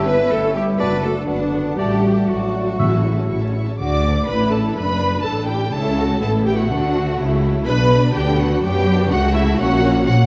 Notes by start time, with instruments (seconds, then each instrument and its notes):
Already playing: double bass section G1, bassoon E4
0.06 french horn section B3, cello section B4, clarinet B4, violin section E5 G5
0.10 viola section E4
0.20 viola section C#4, violin section C#5 A5
0.30 double bass section G1, french horn section A3, viola section E4, cello section A4, clarinet A4, violin section E5 G5
0.43 viola section C#4, violin section C#5 A5
0.53 french horn section G3, viola section E4, cello section G4, clarinet G4, violin section E5 G5
0.67 viola section C#4, violin section C#5 A5
0.78 double bass section F#1, french horn section B3, bassoon D4, viola section F#4, cello section B4, clarinet B4, violin section D5 F#5, oboe D5, flute section A5
0.90 viola section D4, violin section F#5 A5
1.02 french horn section A3, viola section F#4, clarinet A4, cello section A4, violin section D5 F#5
1.16 viola section D4, violin section F#5 A5
1.27 double bass section F#1, french horn section D3, bassoon B3, cello section D4, clarinet D4, viola section F#4, violin section D5 F#5
1.39 viola section D4, violin section F#5 A5
1.54 viola section F#4, violin section D5 F#5
1.66 viola section D4, violin section F#5 A5
1.76 double bass section A1, french horn section G3, bassoon A3, viola section F#4, cello section G4, clarinet G4, oboe D5, violin section D5 F#5, flute section A5
1.91 viola section D4, violin section F#5 A5
2.02 viola section F#4, violin section D5 F#5
2.16 viola section D4, violin section F#5 A5
2.29 double bass section A1, french horn section F#3, cello section F#4, clarinet F#4, viola section F#4, violin section D5 F#5
2.40 viola section D4, violin section F#5 A5
2.52 viola section F#4, violin section D5 F#5
2.65 viola section D4, violin section F#5 A5
2.78 double bass section A1, timpani A2, viola section E4, violin section E5 C#6, oboe E5, flute section C#6
2.91 viola section C#4, violin section C#5 A5
3.03 viola section E4, violin section E5 C#6
3.16 viola section C#4, violin section C#5 A5
3.29 double bass section A1, viola section E4, violin section E5 C#6
3.41 viola section C#4, violin section C#5 A5
3.54 viola section E4, violin section E5 C#6
3.67 viola section C#4, violin section C#5 A5
3.79 double bass section D2, cello section D3, violin section F#4 D6, viola section D5
4.06 violin section D4
4.28 double bass section A1, cello section A2, viola section B4, violin section B5
4.33 violin section E4
4.51 viola section A4, violin section A5
4.76 double bass section F#1, cello section F#2, violin section D4 B5, viola section B4
5.22 double bass section A1, cello section A2, viola section A4, violin section A5
5.27 violin section D4
5.48 viola section G4, violin section G5
5.73 double bass section C#2, cello section C#3, violin section C#4 E4 A5, viola section A4
5.98 violin section F#4
6.21 double bass section A1, cello section A2, violin section B3 E4 A5, viola section A4
6.46 viola section G4, violin section G5
6.58 viola section F#4, violin section F#5
6.70 double bass section D2, cello section D3, violin section A3 D4
6.94 violin section F#4
7.18 double bass section C#2, cello section C#3, violin section E4
7.66 double bass section B1, cello section B2, violin section D4 B5, viola section B4
8.14 double bass section D2, cello section D3, violin section B3 G5, viola section G4
8.39 viola section F#4, violin section F#5
8.63 double bass section F#2, cello section F#3, violin section B3 D4 G5, viola section G4
9.11 double bass section C#2, cello section C#3, violin section A3 F#4 F#5, viola section F#4
9.35 viola section E4, violin section E5
9.58 double bass section A#1, cello section A#2, violin section A#3 C#4 F#5, viola section F#4
9.82 violin section C#4
10.06 double bass section A#2, cello section A#3, violin section C#4 F#5, viola section F#4